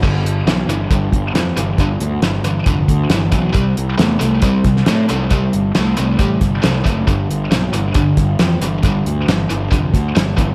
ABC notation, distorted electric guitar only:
X:1
M:4/4
L:1/8
Q:1/4=136
K:C
V:1 name="Distorted electric guitar" clef=bass
[G,,D,]2 [G,,E,] [G,,E,] [G,,D,]2 [G,,E,] [G,,E,] | [G,,D,]2 [G,,E,] [G,,E,] [G,,D,]2 [G,,E,] [G,,E,] | [C,G,]2 [C,A,] [C,A,] [C,G,]2 [C,A,] [C,A,] | [C,G,]2 [C,A,] [C,A,] [C,G,]2 [C,A,] [C,A,] |
[G,,D,]2 [G,,E,] [G,,E,] [G,,D,]2 [G,,E,] [G,,E,] | [G,,D,]2 [G,,E,] [G,,E,] [G,,D,]2 [G,,E,] [G,,E,] |]